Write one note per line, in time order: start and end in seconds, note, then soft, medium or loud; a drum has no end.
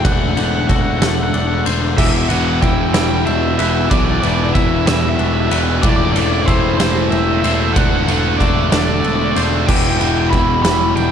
0.04 0.35 E1 loud
0.04 0.36 D3 loud
0.04 1.66 E3 medium
0.04 0.36 A3 loud
0.04 0.37 D4 loud
0.04 0.12 F#5 medium
0.04 0.69 F#6 loud
0.04 kick loud
0.04 ride loud
0.13 0.20 F#5 medium
0.20 0.27 F#5 medium
0.28 0.35 F#5 medium
0.37 0.67 E1 loud
0.37 0.68 D3 medium
0.37 0.68 A3 medium
0.37 0.69 D4 loud
0.37 0.43 F#5 medium
0.37 ride medium
0.43 0.51 F#5 medium
0.52 0.59 F#5 medium
0.60 0.67 F#5 medium
0.68 0.99 E1 medium
0.68 1.00 D3 medium
0.68 1.01 A3 medium
0.68 1.02 D4 loud
0.68 1.98 F#4 medium
0.68 0.75 F#5 medium
0.68 1.32 E6 medium
0.68 kick medium
0.68 ride medium
0.75 0.82 F#5 medium
0.82 0.90 F#5 medium
0.91 0.98 F#5 medium
0.99 1.31 E1 loud
0.99 1.64 D3 medium
0.99 1.98 A3 medium
0.99 1.65 A3 medium
0.99 1.67 D4 loud
0.99 1.06 F#5 medium
0.99 snare loud
0.99 ride loud
1.07 1.14 F#5 medium
1.15 1.23 F#5 medium
1.24 1.30 F#5 medium
1.31 1.64 E1 loud
1.31 2.01 D4 medium
1.31 1.37 F#5 medium
1.31 1.98 E6 medium
1.31 ride medium
1.38 1.45 F#5 medium
1.47 1.54 F#5 medium
1.54 1.62 F#5 medium
1.66 1.96 E1 medium
1.66 1.96 D3 medium
1.66 1.96 A3 medium
1.66 2.01 D4 medium
1.66 1.98 C5 medium
1.66 ride medium
1.98 2.28 E1 loud
1.98 2.30 E2 loud
1.98 2.30 B2 loud
1.98 3.90 E3 medium
1.98 2.31 E3 loud
1.98 2.29 E5 loud
1.98 2.62 D6 loud
1.98 kick loud
1.98 crash loud
2.30 2.60 E1 medium
2.30 2.62 E2 medium
2.30 2.62 B2 loud
2.30 2.63 E3 medium
2.30 2.60 F#5 medium
2.30 ride medium
2.62 2.92 E1 medium
2.62 2.94 E2 medium
2.62 2.94 B2 medium
2.62 2.95 E3 medium
2.62 4.54 E4 medium
2.62 2.93 G5 medium
2.62 3.27 E6 medium
2.62 kick medium
2.62 ride medium
2.94 3.24 E1 loud
2.94 3.59 E2 loud
2.94 3.59 B2 loud
2.94 3.60 E3 loud
2.94 4.55 G3 medium
2.94 3.26 G5 medium
2.94 snare loud
2.94 ride loud
3.26 3.57 E1 medium
3.26 4.87 D4 medium
3.26 3.57 E5 medium
3.26 3.91 G6 medium
3.26 ride medium
3.58 3.89 E1 loud
3.58 3.91 E2 medium
3.58 3.91 B2 medium
3.58 3.92 E3 loud
3.58 5.20 B4 medium
3.58 3.90 E5 medium
3.58 ride medium
3.90 4.21 B1 loud
3.90 4.23 E2 loud
3.90 4.22 B2 loud
3.90 5.51 E3 medium
3.90 4.24 E3 loud
3.90 3.98 D5 loud
3.90 4.55 F#6 medium
3.90 kick loud
3.90 ride loud
3.98 4.04 D5 medium
4.05 4.11 D5 medium
4.12 4.19 D5 medium
4.20 4.53 E1 medium
4.20 4.55 E2 medium
4.20 4.55 B2 loud
4.20 4.56 E3 loud
4.20 4.28 D5 medium
4.20 ride medium
4.28 4.35 D5 medium
4.35 4.43 D5 medium
4.44 4.51 D5 medium
4.54 4.85 E1 medium
4.54 4.86 E2 medium
4.54 4.87 B2 medium
4.54 4.88 E3 loud
4.54 5.83 E4 medium
4.54 4.86 E5 medium
4.54 5.18 E6 medium
4.54 kick medium
4.54 ride medium
4.87 5.17 E1 loud
4.87 5.50 E2 loud
4.87 5.51 B2 loud
4.87 5.52 E3 loud
4.87 5.84 G3 medium
4.87 4.94 E5 medium
4.87 snare loud
4.87 ride loud
4.94 5.01 E5 medium
5.01 5.09 E5 medium
5.09 5.16 E5 medium
5.17 5.49 E1 loud
5.17 5.84 D4 medium
5.17 5.24 E5 medium
5.17 5.83 E6 medium
5.17 ride medium
5.25 5.33 E5 medium
5.33 5.40 E5 medium
5.40 5.47 E5 medium
5.47 5.81 E1 loud
5.47 5.84 B4 medium
5.47 5.55 E5 medium
5.47 ride medium
5.52 5.82 E2 medium
5.52 5.82 B2 medium
5.52 5.82 E3 medium
5.82 6.13 E1 loud
5.82 6.15 A2 loud
5.82 7.44 E3 medium
5.82 6.16 E3 loud
5.82 6.17 A3 loud
5.82 5.89 D5 medium
5.82 6.48 D6 loud
5.82 kick loud
5.82 ride loud
5.90 5.96 D5 medium
5.96 6.04 D5 medium
6.05 6.12 D5 medium
6.12 6.46 E1 loud
6.12 6.19 D5 medium
6.12 ride medium
6.17 6.47 A2 medium
6.17 6.48 E3 medium
6.17 6.49 A3 loud
6.17 6.25 D5 medium
6.26 6.33 D5 medium
6.34 6.41 D5 medium
6.42 6.77 C5 loud
6.42 6.49 D5 medium
6.47 6.78 E1 medium
6.47 6.79 A2 medium
6.47 6.80 E3 medium
6.47 6.80 A3 loud
6.47 7.76 E4 medium
6.47 7.12 E6 medium
6.47 kick medium
6.47 ride medium
6.78 7.10 E1 loud
6.78 7.44 A2 loud
6.78 7.44 E3 loud
6.78 7.76 A3 medium
6.78 7.45 A3 loud
6.78 7.09 C5 loud
6.78 snare loud
6.78 ride loud
7.10 7.41 E1 loud
7.10 7.77 C4 medium
7.10 7.40 E5 medium
7.10 7.76 G6 medium
7.10 ride medium
7.41 7.74 E1 loud
7.41 7.75 A2 medium
7.41 7.76 C5 medium
7.41 7.73 E5 medium
7.41 ride medium
7.45 7.75 E3 medium
7.45 7.75 A3 loud
7.74 8.06 E1 medium
7.74 8.07 D3 medium
7.74 9.37 E3 medium
7.74 8.08 A3 loud
7.74 8.09 D4 loud
7.74 7.80 F#5 loud
7.74 8.40 F#6 medium
7.74 kick loud
7.74 ride loud
7.81 7.89 F#5 medium
7.89 7.97 F#5 medium
7.97 8.03 F#5 medium
8.04 8.11 F#5 loud
8.08 8.38 E1 medium
8.08 8.39 D3 medium
8.08 8.40 A3 medium
8.08 8.41 D4 loud
8.08 8.19 F#5 medium
8.08 ride medium
8.20 8.28 F#5 loud
8.29 8.36 F#5 medium
8.38 8.70 E1 medium
8.38 8.71 D3 medium
8.38 8.72 A3 medium
8.38 8.73 D4 medium
8.38 9.69 F#4 medium
8.38 8.69 D5 medium
8.38 9.03 E6 medium
8.38 kick medium
8.38 ride medium
8.70 9.02 E1 loud
8.70 9.34 D3 loud
8.70 9.69 A3 medium
8.70 9.35 A3 medium
8.70 9.37 D4 loud
8.70 8.78 D5 medium
8.70 snare loud
8.70 ride loud
8.78 8.86 D5 medium
8.86 8.93 D5 medium
8.94 9.00 D5 medium
9.00 9.34 E1 medium
9.00 9.08 D5 medium
9.04 9.71 D4 medium
9.04 9.69 E6 medium
9.04 ride medium
9.08 9.15 D5 medium
9.15 9.23 D5 medium
9.24 9.31 D5 medium
9.31 9.39 D5 medium
9.36 9.66 E1 medium
9.36 9.66 D3 medium
9.36 9.67 A3 medium
9.36 9.71 D4 medium
9.36 9.69 C5 medium
9.36 ride medium
9.67 9.98 E1 loud
9.67 10.00 E2 loud
9.67 10.00 B2 loud
9.67 11.12 E3 medium
9.67 10.01 E3 loud
9.67 9.75 G5 loud
9.67 10.33 D6 loud
9.67 kick loud
9.67 crash loud
9.75 9.81 G5 medium
9.82 9.89 G5 loud
9.90 9.97 G5 loud
9.97 10.30 E1 loud
9.97 10.32 E2 medium
9.97 10.32 B2 medium
9.97 10.04 G5 loud
9.97 ride medium
10.01 10.33 E3 loud
10.01 10.12 G5 medium
10.13 10.20 G5 medium
10.21 10.28 G5 medium
10.30 10.63 E1 medium
10.30 10.64 E2 medium
10.30 10.64 B2 medium
10.30 10.65 E3 loud
10.30 11.12 E4 medium
10.30 10.62 B5 loud
10.30 10.97 E6 medium
10.30 kick medium
10.30 ride medium
10.63 10.94 E1 medium
10.63 11.12 E2 medium
10.63 11.12 B2 medium
10.63 11.12 E3 loud
10.63 11.12 G3 medium
10.63 10.96 B5 loud
10.63 snare loud
10.63 ride loud
10.96 11.12 E1 medium
10.96 11.12 D4 medium
10.96 11.12 G5 loud
10.96 11.12 G6 medium
10.96 ride medium